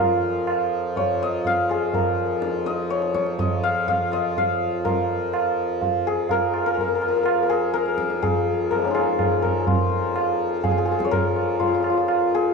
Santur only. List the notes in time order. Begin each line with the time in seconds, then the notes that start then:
Already playing: D#4 F4 C#5 D#5 F5 G#5
0.00 A#4
0.97 C#5
1.23 D#5
1.47 F5
1.71 G#4
1.94 A#4
2.66 D#5
2.90 C#5
3.14 C#5
3.39 D#5
3.63 F5
3.88 F5
4.13 D#5
4.38 F5
4.85 A#4
6.07 G#4
6.31 A#4
6.66 A#4
6.74 A#4
6.81 A#4
6.88 A#4
6.95 A#4
7.02 A#4
7.08 A#4
7.16 A#4
7.23 A#4
7.43 A#4
7.49 G#4
7.74 A#4
8.22 G#4
8.71 F3 A#4
8.78 G#3 A#3
8.85 C#4 D#4
8.91 F4 G#4
9.42 A#4
9.60 G#4
9.67 F4
10.63 G#4
10.71 G#4
10.78 G#4
10.85 G#4
10.91 G#4
10.99 G#4
11.05 C#5
11.11 A#4
11.60 F4
11.67 F4
11.74 F4
11.82 F4
11.90 F4
11.97 F4
12.35 G#4